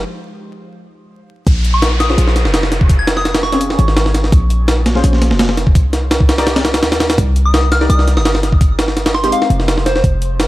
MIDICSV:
0, 0, Header, 1, 6, 480
1, 0, Start_track
1, 0, Tempo, 357143
1, 51, Time_signature, 4, 2, 24, 8
1, 14080, End_track
2, 0, Start_track
2, 0, Title_t, "Synth bell"
2, 0, Program_c, 0, 98
2, 2337, Note_on_c, 0, 85, 94
2, 2623, Note_off_c, 0, 85, 0
2, 2689, Note_on_c, 0, 87, 87
2, 2980, Note_off_c, 0, 87, 0
2, 4017, Note_on_c, 0, 92, 90
2, 4232, Note_off_c, 0, 92, 0
2, 4259, Note_on_c, 0, 87, 97
2, 4544, Note_off_c, 0, 87, 0
2, 4611, Note_on_c, 0, 85, 85
2, 5285, Note_off_c, 0, 85, 0
2, 10020, Note_on_c, 0, 87, 93
2, 10304, Note_off_c, 0, 87, 0
2, 10374, Note_on_c, 0, 89, 90
2, 10614, Note_on_c, 0, 87, 98
2, 10663, Note_off_c, 0, 89, 0
2, 10903, Note_off_c, 0, 87, 0
2, 10980, Note_on_c, 0, 87, 94
2, 11264, Note_off_c, 0, 87, 0
2, 12292, Note_on_c, 0, 84, 88
2, 12372, Note_off_c, 0, 84, 0
2, 12419, Note_on_c, 0, 84, 78
2, 12491, Note_off_c, 0, 84, 0
2, 12533, Note_on_c, 0, 77, 91
2, 12613, Note_off_c, 0, 77, 0
2, 12659, Note_on_c, 0, 77, 76
2, 12731, Note_off_c, 0, 77, 0
2, 13251, Note_on_c, 0, 72, 87
2, 13332, Note_off_c, 0, 72, 0
2, 13380, Note_on_c, 0, 72, 77
2, 13452, Note_off_c, 0, 72, 0
2, 14080, End_track
3, 0, Start_track
3, 0, Title_t, "Synth stab"
3, 0, Program_c, 1, 62
3, 2816, Note_on_c, 1, 61, 82
3, 2816, Note_on_c, 1, 65, 77
3, 2816, Note_on_c, 1, 72, 96
3, 2817, Note_on_c, 1, 68, 78
3, 4706, Note_off_c, 1, 61, 0
3, 4706, Note_off_c, 1, 72, 0
3, 4707, Note_off_c, 1, 65, 0
3, 4707, Note_off_c, 1, 68, 0
3, 4737, Note_on_c, 1, 60, 96
3, 4737, Note_on_c, 1, 65, 78
3, 4738, Note_on_c, 1, 61, 90
3, 4738, Note_on_c, 1, 68, 77
3, 6627, Note_off_c, 1, 60, 0
3, 6627, Note_off_c, 1, 65, 0
3, 6627, Note_off_c, 1, 68, 0
3, 6628, Note_off_c, 1, 61, 0
3, 6657, Note_on_c, 1, 61, 87
3, 6658, Note_on_c, 1, 65, 82
3, 6658, Note_on_c, 1, 68, 81
3, 6658, Note_on_c, 1, 72, 93
3, 7718, Note_off_c, 1, 61, 0
3, 7718, Note_off_c, 1, 65, 0
3, 7718, Note_off_c, 1, 68, 0
3, 7718, Note_off_c, 1, 72, 0
3, 8578, Note_on_c, 1, 70, 78
3, 8578, Note_on_c, 1, 74, 96
3, 8579, Note_on_c, 1, 63, 86
3, 8579, Note_on_c, 1, 67, 81
3, 10467, Note_off_c, 1, 70, 0
3, 10467, Note_off_c, 1, 74, 0
3, 10468, Note_off_c, 1, 63, 0
3, 10468, Note_off_c, 1, 67, 0
3, 10497, Note_on_c, 1, 67, 77
3, 10498, Note_on_c, 1, 63, 85
3, 10498, Note_on_c, 1, 70, 80
3, 10498, Note_on_c, 1, 74, 92
3, 12387, Note_off_c, 1, 67, 0
3, 12387, Note_off_c, 1, 74, 0
3, 12388, Note_off_c, 1, 63, 0
3, 12388, Note_off_c, 1, 70, 0
3, 12417, Note_on_c, 1, 56, 85
3, 12417, Note_on_c, 1, 60, 78
3, 12417, Note_on_c, 1, 63, 83
3, 12418, Note_on_c, 1, 67, 96
3, 14080, Note_off_c, 1, 56, 0
3, 14080, Note_off_c, 1, 60, 0
3, 14080, Note_off_c, 1, 63, 0
3, 14080, Note_off_c, 1, 67, 0
3, 14080, End_track
4, 0, Start_track
4, 0, Title_t, "808-style bass"
4, 0, Program_c, 2, 38
4, 1971, Note_on_c, 2, 34, 104
4, 2913, Note_off_c, 2, 34, 0
4, 2928, Note_on_c, 2, 34, 89
4, 3293, Note_on_c, 2, 29, 101
4, 3313, Note_off_c, 2, 34, 0
4, 5071, Note_off_c, 2, 29, 0
4, 5091, Note_on_c, 2, 32, 102
4, 5793, Note_off_c, 2, 32, 0
4, 5811, Note_on_c, 2, 34, 103
4, 6753, Note_off_c, 2, 34, 0
4, 6771, Note_on_c, 2, 34, 95
4, 7138, Note_on_c, 2, 29, 99
4, 7159, Note_off_c, 2, 34, 0
4, 7732, Note_on_c, 2, 36, 98
4, 7752, Note_off_c, 2, 29, 0
4, 9171, Note_on_c, 2, 39, 107
4, 9191, Note_off_c, 2, 36, 0
4, 9633, Note_off_c, 2, 39, 0
4, 9651, Note_on_c, 2, 36, 101
4, 10593, Note_off_c, 2, 36, 0
4, 10611, Note_on_c, 2, 36, 91
4, 10976, Note_on_c, 2, 31, 101
4, 10996, Note_off_c, 2, 36, 0
4, 12512, Note_off_c, 2, 31, 0
4, 12769, Note_on_c, 2, 29, 96
4, 13472, Note_off_c, 2, 29, 0
4, 13492, Note_on_c, 2, 29, 105
4, 14080, Note_off_c, 2, 29, 0
4, 14080, End_track
5, 0, Start_track
5, 0, Title_t, "Downlifter"
5, 0, Program_c, 3, 103
5, 1969, Note_on_c, 3, 60, 78
5, 5810, Note_off_c, 3, 60, 0
5, 14080, End_track
6, 0, Start_track
6, 0, Title_t, "Drums"
6, 1970, Note_on_c, 9, 36, 116
6, 1971, Note_on_c, 9, 42, 92
6, 2105, Note_off_c, 9, 36, 0
6, 2106, Note_off_c, 9, 42, 0
6, 2211, Note_on_c, 9, 42, 69
6, 2345, Note_off_c, 9, 42, 0
6, 2450, Note_on_c, 9, 38, 119
6, 2450, Note_on_c, 9, 42, 86
6, 2585, Note_off_c, 9, 38, 0
6, 2585, Note_off_c, 9, 42, 0
6, 2690, Note_on_c, 9, 38, 64
6, 2690, Note_on_c, 9, 42, 69
6, 2818, Note_off_c, 9, 38, 0
6, 2818, Note_on_c, 9, 38, 37
6, 2825, Note_off_c, 9, 42, 0
6, 2931, Note_on_c, 9, 42, 89
6, 2952, Note_off_c, 9, 38, 0
6, 3058, Note_on_c, 9, 38, 40
6, 3065, Note_off_c, 9, 42, 0
6, 3170, Note_off_c, 9, 38, 0
6, 3170, Note_on_c, 9, 38, 42
6, 3170, Note_on_c, 9, 42, 69
6, 3296, Note_off_c, 9, 38, 0
6, 3296, Note_on_c, 9, 38, 50
6, 3305, Note_off_c, 9, 42, 0
6, 3410, Note_off_c, 9, 38, 0
6, 3410, Note_on_c, 9, 38, 115
6, 3410, Note_on_c, 9, 42, 92
6, 3537, Note_off_c, 9, 38, 0
6, 3537, Note_on_c, 9, 38, 54
6, 3545, Note_off_c, 9, 42, 0
6, 3651, Note_off_c, 9, 38, 0
6, 3651, Note_on_c, 9, 38, 49
6, 3651, Note_on_c, 9, 42, 70
6, 3777, Note_on_c, 9, 36, 99
6, 3786, Note_off_c, 9, 38, 0
6, 3786, Note_off_c, 9, 42, 0
6, 3890, Note_off_c, 9, 36, 0
6, 3890, Note_on_c, 9, 36, 120
6, 3890, Note_on_c, 9, 42, 93
6, 4024, Note_off_c, 9, 36, 0
6, 4024, Note_off_c, 9, 42, 0
6, 4131, Note_on_c, 9, 38, 109
6, 4131, Note_on_c, 9, 42, 82
6, 4257, Note_off_c, 9, 38, 0
6, 4257, Note_on_c, 9, 38, 43
6, 4265, Note_off_c, 9, 42, 0
6, 4371, Note_off_c, 9, 38, 0
6, 4371, Note_on_c, 9, 38, 48
6, 4371, Note_on_c, 9, 42, 64
6, 4496, Note_off_c, 9, 38, 0
6, 4496, Note_off_c, 9, 42, 0
6, 4496, Note_on_c, 9, 38, 109
6, 4496, Note_on_c, 9, 42, 84
6, 4611, Note_off_c, 9, 38, 0
6, 4611, Note_on_c, 9, 38, 42
6, 4630, Note_off_c, 9, 42, 0
6, 4737, Note_off_c, 9, 38, 0
6, 4737, Note_on_c, 9, 38, 46
6, 4737, Note_on_c, 9, 42, 60
6, 4849, Note_off_c, 9, 42, 0
6, 4849, Note_on_c, 9, 42, 89
6, 4871, Note_off_c, 9, 38, 0
6, 4977, Note_on_c, 9, 38, 43
6, 4983, Note_off_c, 9, 42, 0
6, 5090, Note_on_c, 9, 42, 67
6, 5111, Note_off_c, 9, 38, 0
6, 5216, Note_on_c, 9, 38, 45
6, 5225, Note_off_c, 9, 42, 0
6, 5330, Note_off_c, 9, 38, 0
6, 5330, Note_on_c, 9, 38, 108
6, 5330, Note_on_c, 9, 42, 80
6, 5457, Note_off_c, 9, 38, 0
6, 5457, Note_on_c, 9, 38, 48
6, 5465, Note_off_c, 9, 42, 0
6, 5570, Note_off_c, 9, 38, 0
6, 5570, Note_on_c, 9, 38, 51
6, 5570, Note_on_c, 9, 42, 69
6, 5699, Note_off_c, 9, 38, 0
6, 5699, Note_on_c, 9, 38, 40
6, 5705, Note_off_c, 9, 42, 0
6, 5810, Note_on_c, 9, 42, 91
6, 5811, Note_on_c, 9, 36, 117
6, 5833, Note_off_c, 9, 38, 0
6, 5945, Note_off_c, 9, 36, 0
6, 5945, Note_off_c, 9, 42, 0
6, 6051, Note_on_c, 9, 42, 71
6, 6185, Note_off_c, 9, 42, 0
6, 6290, Note_on_c, 9, 38, 117
6, 6290, Note_on_c, 9, 42, 85
6, 6424, Note_off_c, 9, 38, 0
6, 6424, Note_off_c, 9, 42, 0
6, 6530, Note_on_c, 9, 38, 63
6, 6530, Note_on_c, 9, 42, 74
6, 6658, Note_off_c, 9, 38, 0
6, 6658, Note_on_c, 9, 38, 38
6, 6664, Note_off_c, 9, 42, 0
6, 6770, Note_on_c, 9, 42, 89
6, 6792, Note_off_c, 9, 38, 0
6, 6896, Note_on_c, 9, 38, 39
6, 6905, Note_off_c, 9, 42, 0
6, 7011, Note_off_c, 9, 38, 0
6, 7011, Note_on_c, 9, 38, 44
6, 7011, Note_on_c, 9, 42, 68
6, 7136, Note_off_c, 9, 38, 0
6, 7136, Note_on_c, 9, 38, 51
6, 7145, Note_off_c, 9, 42, 0
6, 7249, Note_off_c, 9, 38, 0
6, 7249, Note_on_c, 9, 38, 121
6, 7249, Note_on_c, 9, 42, 90
6, 7377, Note_off_c, 9, 38, 0
6, 7377, Note_on_c, 9, 38, 53
6, 7383, Note_off_c, 9, 42, 0
6, 7492, Note_off_c, 9, 38, 0
6, 7492, Note_on_c, 9, 38, 47
6, 7492, Note_on_c, 9, 42, 70
6, 7617, Note_on_c, 9, 36, 102
6, 7626, Note_off_c, 9, 38, 0
6, 7626, Note_off_c, 9, 42, 0
6, 7731, Note_off_c, 9, 36, 0
6, 7731, Note_on_c, 9, 36, 118
6, 7731, Note_on_c, 9, 42, 99
6, 7866, Note_off_c, 9, 36, 0
6, 7866, Note_off_c, 9, 42, 0
6, 7971, Note_on_c, 9, 38, 55
6, 7971, Note_on_c, 9, 42, 73
6, 8105, Note_off_c, 9, 38, 0
6, 8105, Note_off_c, 9, 42, 0
6, 8211, Note_on_c, 9, 38, 119
6, 8211, Note_on_c, 9, 42, 93
6, 8338, Note_on_c, 9, 36, 103
6, 8346, Note_off_c, 9, 38, 0
6, 8346, Note_off_c, 9, 42, 0
6, 8452, Note_on_c, 9, 38, 111
6, 8452, Note_on_c, 9, 42, 82
6, 8473, Note_off_c, 9, 36, 0
6, 8578, Note_off_c, 9, 38, 0
6, 8578, Note_off_c, 9, 42, 0
6, 8578, Note_on_c, 9, 38, 104
6, 8578, Note_on_c, 9, 42, 79
6, 8691, Note_off_c, 9, 38, 0
6, 8691, Note_off_c, 9, 42, 0
6, 8691, Note_on_c, 9, 38, 109
6, 8691, Note_on_c, 9, 42, 78
6, 8818, Note_off_c, 9, 38, 0
6, 8818, Note_off_c, 9, 42, 0
6, 8818, Note_on_c, 9, 38, 102
6, 8818, Note_on_c, 9, 42, 79
6, 8933, Note_off_c, 9, 38, 0
6, 8933, Note_off_c, 9, 42, 0
6, 8933, Note_on_c, 9, 38, 98
6, 8933, Note_on_c, 9, 42, 77
6, 9059, Note_off_c, 9, 38, 0
6, 9059, Note_off_c, 9, 42, 0
6, 9059, Note_on_c, 9, 38, 109
6, 9059, Note_on_c, 9, 42, 85
6, 9174, Note_off_c, 9, 38, 0
6, 9174, Note_off_c, 9, 42, 0
6, 9174, Note_on_c, 9, 38, 110
6, 9174, Note_on_c, 9, 42, 80
6, 9300, Note_off_c, 9, 38, 0
6, 9300, Note_off_c, 9, 42, 0
6, 9300, Note_on_c, 9, 38, 106
6, 9300, Note_on_c, 9, 42, 80
6, 9412, Note_off_c, 9, 38, 0
6, 9412, Note_off_c, 9, 42, 0
6, 9412, Note_on_c, 9, 38, 110
6, 9412, Note_on_c, 9, 42, 82
6, 9538, Note_off_c, 9, 38, 0
6, 9538, Note_off_c, 9, 42, 0
6, 9538, Note_on_c, 9, 38, 111
6, 9538, Note_on_c, 9, 42, 87
6, 9651, Note_on_c, 9, 36, 119
6, 9652, Note_off_c, 9, 42, 0
6, 9652, Note_on_c, 9, 42, 92
6, 9673, Note_off_c, 9, 38, 0
6, 9786, Note_off_c, 9, 36, 0
6, 9786, Note_off_c, 9, 42, 0
6, 9892, Note_on_c, 9, 42, 71
6, 10027, Note_off_c, 9, 42, 0
6, 10133, Note_on_c, 9, 38, 121
6, 10133, Note_on_c, 9, 42, 89
6, 10267, Note_off_c, 9, 38, 0
6, 10267, Note_off_c, 9, 42, 0
6, 10372, Note_on_c, 9, 38, 60
6, 10372, Note_on_c, 9, 42, 69
6, 10499, Note_off_c, 9, 38, 0
6, 10499, Note_on_c, 9, 38, 39
6, 10507, Note_off_c, 9, 42, 0
6, 10613, Note_on_c, 9, 42, 89
6, 10633, Note_off_c, 9, 38, 0
6, 10739, Note_on_c, 9, 38, 40
6, 10747, Note_off_c, 9, 42, 0
6, 10853, Note_off_c, 9, 38, 0
6, 10853, Note_on_c, 9, 38, 43
6, 10853, Note_on_c, 9, 42, 68
6, 10979, Note_off_c, 9, 38, 0
6, 10979, Note_on_c, 9, 38, 51
6, 10987, Note_off_c, 9, 42, 0
6, 11092, Note_off_c, 9, 38, 0
6, 11092, Note_on_c, 9, 38, 119
6, 11092, Note_on_c, 9, 42, 94
6, 11219, Note_off_c, 9, 38, 0
6, 11219, Note_on_c, 9, 38, 56
6, 11227, Note_off_c, 9, 42, 0
6, 11332, Note_off_c, 9, 38, 0
6, 11332, Note_on_c, 9, 38, 49
6, 11332, Note_on_c, 9, 42, 68
6, 11457, Note_on_c, 9, 36, 103
6, 11466, Note_off_c, 9, 38, 0
6, 11466, Note_off_c, 9, 42, 0
6, 11570, Note_off_c, 9, 36, 0
6, 11570, Note_on_c, 9, 36, 117
6, 11570, Note_on_c, 9, 42, 92
6, 11704, Note_off_c, 9, 42, 0
6, 11705, Note_off_c, 9, 36, 0
6, 11810, Note_on_c, 9, 38, 107
6, 11810, Note_on_c, 9, 42, 83
6, 11937, Note_off_c, 9, 38, 0
6, 11937, Note_on_c, 9, 38, 41
6, 11945, Note_off_c, 9, 42, 0
6, 12051, Note_off_c, 9, 38, 0
6, 12051, Note_on_c, 9, 38, 45
6, 12051, Note_on_c, 9, 42, 63
6, 12176, Note_off_c, 9, 38, 0
6, 12176, Note_off_c, 9, 42, 0
6, 12176, Note_on_c, 9, 38, 110
6, 12176, Note_on_c, 9, 42, 83
6, 12290, Note_off_c, 9, 38, 0
6, 12290, Note_on_c, 9, 38, 45
6, 12310, Note_off_c, 9, 42, 0
6, 12415, Note_off_c, 9, 38, 0
6, 12415, Note_on_c, 9, 38, 46
6, 12415, Note_on_c, 9, 42, 60
6, 12531, Note_off_c, 9, 42, 0
6, 12531, Note_on_c, 9, 42, 92
6, 12549, Note_off_c, 9, 38, 0
6, 12658, Note_on_c, 9, 38, 45
6, 12665, Note_off_c, 9, 42, 0
6, 12771, Note_on_c, 9, 42, 68
6, 12792, Note_off_c, 9, 38, 0
6, 12898, Note_on_c, 9, 38, 46
6, 12906, Note_off_c, 9, 42, 0
6, 13011, Note_off_c, 9, 38, 0
6, 13011, Note_on_c, 9, 38, 106
6, 13011, Note_on_c, 9, 42, 83
6, 13139, Note_off_c, 9, 38, 0
6, 13139, Note_on_c, 9, 38, 47
6, 13146, Note_off_c, 9, 42, 0
6, 13253, Note_off_c, 9, 38, 0
6, 13253, Note_on_c, 9, 38, 52
6, 13253, Note_on_c, 9, 42, 68
6, 13381, Note_off_c, 9, 38, 0
6, 13381, Note_on_c, 9, 38, 41
6, 13387, Note_off_c, 9, 42, 0
6, 13491, Note_on_c, 9, 36, 117
6, 13493, Note_on_c, 9, 42, 96
6, 13515, Note_off_c, 9, 38, 0
6, 13625, Note_off_c, 9, 36, 0
6, 13627, Note_off_c, 9, 42, 0
6, 13732, Note_on_c, 9, 42, 74
6, 13867, Note_off_c, 9, 42, 0
6, 13972, Note_on_c, 9, 38, 119
6, 13972, Note_on_c, 9, 42, 93
6, 14080, Note_off_c, 9, 38, 0
6, 14080, Note_off_c, 9, 42, 0
6, 14080, End_track
0, 0, End_of_file